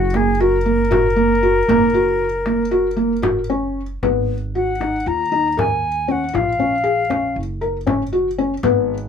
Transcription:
Already playing: F#1 F#4
0.14 A#3 G#4, frame drum
0.40 F#4 A#4, frame drum
0.66 A#3
0.91 F#4, frame drum
1.16 A#3, frame drum
1.43 F#4
1.69 F#1 A#3, frame drum
1.94 F#4, frame drum
2.20 frame drum
2.46 A#3, frame drum
2.71 F#4, frame drum
2.96 A#3, frame drum
3.22 F#4, frame drum
3.50 C#4
4.03 G#1 B3, frame drum
4.55 F#4 F#5
4.80 D#4, frame drum
5.06 D#2 F4 A#5, frame drum
5.32 D#4
5.57 A#4 G#5, frame drum
5.84 frame drum
6.08 C#4 F#5
6.33 A#1 F4 F5, frame drum
6.59 C#4
6.84 G#4
7.10 C#4, frame drum
7.36 F#1, frame drum
7.61 A#4
7.87 C#4, frame drum
8.13 F#4, frame drum
8.38 C#4
8.63 G#1 B3, frame drum

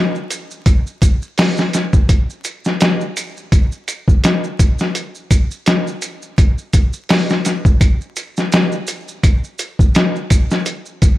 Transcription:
0.15 maracas
0.31 closed hi-hat, maracas
0.51 maracas
0.66 kick, closed hi-hat, maracas
0.87 maracas
1.02 kick, closed hi-hat, maracas
1.22 maracas
1.38 snare, open hi-hat, maracas
1.57 snare, maracas
1.73 snare, closed hi-hat, maracas
1.93 kick, maracas
2.09 kick, closed hi-hat, maracas
2.30 maracas
2.44 closed hi-hat, maracas
2.65 snare, maracas
2.81 snare, closed hi-hat, maracas
3.01 maracas
3.17 closed hi-hat, maracas
3.37 maracas
3.52 kick, closed hi-hat, maracas
3.72 maracas
3.88 closed hi-hat, maracas
4.08 kick, maracas
4.24 snare, closed hi-hat, maracas
4.44 maracas
4.59 kick, closed hi-hat, maracas
4.79 snare, maracas
4.95 closed hi-hat, maracas
5.15 maracas
5.31 kick, closed hi-hat, maracas
5.51 maracas
5.66 snare, closed hi-hat, maracas
5.87 maracas
6.02 closed hi-hat, maracas
6.22 maracas
6.38 kick, closed hi-hat, maracas
6.58 maracas
6.73 kick, closed hi-hat, maracas
6.93 maracas
7.09 snare, open hi-hat, maracas
7.29 snare, maracas
7.45 snare, closed hi-hat, maracas
7.65 kick, maracas
7.81 kick, closed hi-hat, maracas
8.01 maracas
8.16 closed hi-hat, maracas
8.37 snare, maracas
8.52 snare, closed hi-hat, maracas
8.72 maracas
8.87 closed hi-hat, maracas
9.08 maracas
9.24 kick, closed hi-hat, maracas
9.44 maracas
9.59 closed hi-hat, maracas
9.79 kick, maracas
9.95 snare, closed hi-hat, maracas
10.16 maracas
10.30 kick, closed hi-hat, maracas
10.51 snare, maracas
10.66 closed hi-hat, maracas
10.86 maracas
11.02 kick, closed hi-hat, maracas

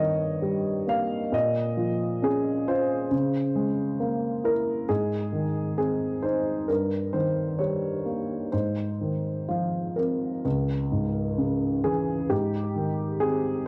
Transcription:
Already playing: G2 D#3 C#5 D#5
0.42 G3
0.87 A#3 F5
1.32 A#2 D#5
1.77 F3
2.22 C#4 G#4
2.68 F4 C5
3.11 C#3
3.55 G#3
4.00 A#3
4.44 E4 A#4
4.89 G#2 G#4
5.33 D#3
5.78 C4 G#4
6.23 D#4 C5
6.68 G2 A#4
7.13 D#3 C5
7.59 G3 C#5
8.05 A#3
8.52 G#2 C5
9.01 D#3
9.49 F3 F4
9.96 C4 A#4
10.45 C#2
10.92 G#2
11.38 C#3
11.84 E3 G#4
12.30 G#2 G4
12.76 D#3
13.20 C4 G#4

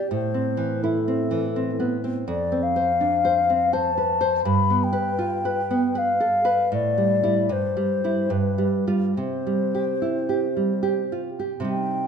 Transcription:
Already playing: G4 D5
0.11 A2 C5
0.34 C4
0.57 E3
0.83 E4 A4
1.08 C4
1.31 E3
1.56 C4
1.80 B3
2.04 C4
2.27 F2 D5
2.52 C4
2.63 F5
2.76 C5
3.01 D4
3.25 C5
3.50 C4
3.73 C5 A5
3.98 B4
4.21 C5
4.45 G2 B5
4.70 B3
4.84 G5
4.93 B4
5.19 F4
5.45 B4
5.71 B3
5.95 B4 F5
6.20 A4
6.45 B4
6.72 A2 D5
6.98 G3
7.23 G3 E4
7.49 G2 C5
7.77 G3
8.04 G3 E4
8.30 G2 B4
8.58 G3
8.87 G3 F4
9.16 C3 C5
9.47 G3
9.75 G4
10.02 E4
10.29 G4
10.57 G3
10.83 G4
11.12 F4
11.39 G4
11.60 C3 G3
11.64 D#4
11.69 G5

